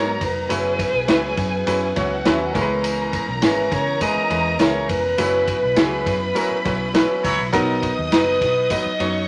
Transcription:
Already playing: G#2 F#3 B3 D#4 A#4 C#5 A#5
0.21 F1 B4, kick, open hi-hat, ride, tambourine
0.49 F#1 F#3 C#4 E4 G#4 B4 G#5, hi-hat pedal, ride, tambourine
0.79 kick, ride, tambourine
0.94 B1
1.08 C#2 F#3 C#4 E4 B4, snare, ride, tambourine
1.37 F#2, kick, ride, tambourine
1.67 F#2 F#3 C#4 E4 B4, ride, tambourine
1.96 C#2 F#3 C#4 E4 F#4 C#5 F#5, kick, snare, ride, tambourine
2.25 D#2 F#3 C#4 E4 B4, snare, ride, tambourine
2.54 C#2 E3 G#3 C#4 E4 A#4 A#5, kick, ride, tambourine
2.61 B4
2.84 ride, tambourine
3.13 kick, ride, tambourine
3.28 B1
3.41 G#1 G#3 C#4 E4 B4 C#5, snare, ride, tambourine
3.71 C#3 C#5, kick, snare, ride, tambourine
4.00 G#3 C#4 E4 B4 D#5, kick, ride, tambourine
4.16 muted picked electric bass stroke
4.29 E2 G#3 C#4 E4 B4, ride, tambourine
4.59 C#2 G#3 C#4 E4 A#4 B4 C#5, snare, ride, tambourine
4.89 F1 B4, kick, open hi-hat, ride, tambourine
5.18 F#1 F#3 C#4 E4 B4 B5, hi-hat pedal, ride, tambourine
5.48 kick, ride, tambourine
5.63 B1
5.76 C#2 F#3 C#4 E4 F#4 G#4 B4, snare, ride, tambourine
6.06 F#2, kick, ride, tambourine
6.35 F#3 C#4 E4 A#4 B4, ride, tambourine
6.51 muted picked electric bass stroke
6.65 B1 F#3 C#4 E4 B4, kick, ride, tambourine
6.93 F#3 C#4 E4 F#4 B4, snare, ride, tambourine
7.23 C#2 F#3 E4 C#5, kick, open hi-hat, ride, tambourine
7.39 B1
7.52 B1 F#3 B3 D#4 A#4 D#5 D#6, kick, hi-hat pedal, ride, tambourine
7.83 kick, ride, tambourine
7.98 D#2
8.11 F#1 F#3 B3 D#4 A#4 B4 A#5, snare, ride, tambourine
8.41 B2, kick, snare, ride, tambourine
8.70 F#3 B3 D#4 B4 D#5, kick, ride, tambourine
8.86 muted picked electric bass stroke
9.00 F#2 F#3 B3 D#4 C#5 C#6, snare, ride, tambourine

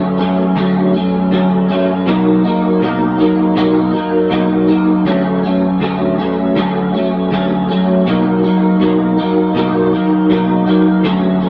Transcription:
Already playing: D3 F#3 A3 C#4
0.18 F#3 A3 C#4
0.56 D3 F#3 A3 C#4
0.93 F#3 A3 C#4
1.31 D3 F#3 A3 C#4
1.68 F#3 A3 C#4
2.06 B2 F#3 A#3 D#4
2.44 F#3 A#3 D#4
2.81 B2 F#3 A#3 D#4
3.18 F#3 A#3 D#4
3.56 B2 F#3 A#3 D#4
3.93 F#3 A#3 D#4
4.30 B2 F#3 A#3 D#4
4.67 F#3 A#3 D#4
5.05 D3 F#3 A3 C#4
5.43 F#3 A3 C#4
5.80 D3 F#3 A3 C#4
6.18 F#3 A3 C#4
6.56 D3 F#3 A3 C#4
6.94 F#3 A3 C#4
7.31 D3 F#3 A3 C#4
7.69 F#3 A3 C#4
8.07 B2 F#3 A#3 D#4
8.43 F#3 A#3 D#4
8.80 B2 F#3 A#3 D#4
9.17 F#3 A#3 D#4
9.55 B2 F#3 A#3 D#4
9.92 F#3 A#3 D#4
10.29 B2 F#3 A#3 D#4
10.66 F#3 A#3 D#4
11.03 D3 F#3 A3 C#4
11.40 F#3 A3 C#4

